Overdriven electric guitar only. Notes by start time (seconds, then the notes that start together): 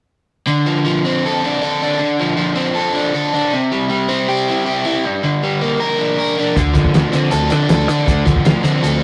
0.47 D3
0.66 F3
0.85 F3
1.05 C4
1.26 A4
1.44 D4
1.62 A4
1.83 D4
1.99 D3
2.19 F3
2.36 F3
2.55 C4
2.75 A4
2.94 D4
3.14 A4
3.34 D4
3.53 C3
3.72 G3
3.90 G3
4.09 C4
4.28 G4
4.48 E4
4.66 G4
4.86 E4
5.05 G2
5.23 D3
5.43 G3
5.61 A#3
5.80 A#4
5.99 D4
6.18 A#4
6.38 D4
6.56 D3
6.73 F3
6.94 F3
7.11 C4
7.31 A4
7.50 D4
7.70 A4
7.88 D4
8.08 D3
8.25 F3
8.45 F3
8.64 C4
8.83 A4